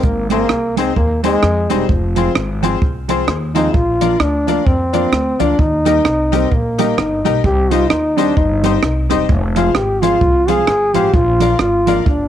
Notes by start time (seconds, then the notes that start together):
0.03 G#1 A#3, kick, hi-hat pedal
0.30 G#3 A#3 C4 D#4 G#4 C5, closed hi-hat
0.49 C2 G#4 C5, cross-stick
0.76 G#3 C4 D#4 G#4 C5, closed hi-hat
0.96 D#2 A#3 G#4 C5, kick
1.23 G#3 C4 D#4 G#4 C5, closed hi-hat
1.43 F2, cross-stick
1.70 E1 G3 G#3 C4 D#4 G#4 C5, closed hi-hat
1.89 F1 F3, kick
2.16 F3 G#3 C4 F4 G#4 C5, closed hi-hat
2.35 G#1, cross-stick
2.62 F3 G#3 C4 F4 G#4 C5, closed hi-hat
2.82 C2, kick
3.08 F3 G#3 C4 F4 G#4 C5, closed hi-hat
3.27 D#2 G#4 C5, cross-stick
3.55 F3 G#3 C4 D#4 F4 G#4 C5, closed hi-hat
3.74 A#1 F4, kick
4.01 F3 A#3 D4 F4 A#4 D5, closed hi-hat
4.20 D2 D4 A#4 D5, cross-stick
4.47 F3 A#3 D4 F4 A#4 D5, closed hi-hat
4.66 F2 C4 A#4 D5, kick
4.93 F3 A#3 D4 F4 A#4 D5, closed hi-hat
5.12 D2, cross-stick
5.39 D2 F3 A#3 D4 F4 A#4 D5, closed hi-hat
5.59 D#2 D#4, kick
5.85 G3 A#3 D#4 G4 A#4 D#5, cross-stick, closed hi-hat
6.05 C2, cross-stick
6.32 G3 A#3 C4 D#4 G4 A#4 D#5, closed hi-hat
6.51 A#1 A#3, kick
6.78 G3 A#3 D#4 G4 A#4 D#5, closed hi-hat
6.97 G1 D#4 A#4 D#5, cross-stick
7.25 B1 G3 A#3 D#4 G4 A#4 D#5, closed hi-hat
7.44 C2 G4, kick
7.71 G3 C4 D#4 F4 G4 C5 D#5, closed hi-hat
7.89 D#2 D#4 C5 D#5, cross-stick
8.17 G3 C4 D4 D#4 G4 C5 D#5, closed hi-hat
8.37 G1 D#4 C5 D#5, kick
8.63 G3 C4 D#4 G4 C5 D#5, closed hi-hat
8.83 C2, cross-stick
9.09 E1 G3 C4 D#4 G4 C5 D#5, closed hi-hat
9.29 F1, kick
9.55 F3 G#3 C4 F4 G#4 C5 F5, closed hi-hat
9.75 G#1 G4, cross-stick
10.01 F3 G#3 C4 F4 G#4 C5 F5, closed hi-hat
10.21 C2, kick
10.47 F3 G#3 C4 F4 G#4 C5 F5, closed hi-hat
10.67 G1 C5 F5, cross-stick
10.94 A1 F3 G#3 C4 F4 G4 G#4 C5 F5, closed hi-hat
11.14 A#1 F4, kick
11.39 F3 A#3 D4 F4 A#4 D5 F5, closed hi-hat
11.59 G#1 F4 D5 F5, cross-stick
11.86 F3 A#3 D4 F4 A#4 D5 F5, closed hi-hat
12.06 G1 D4 D5 F5, kick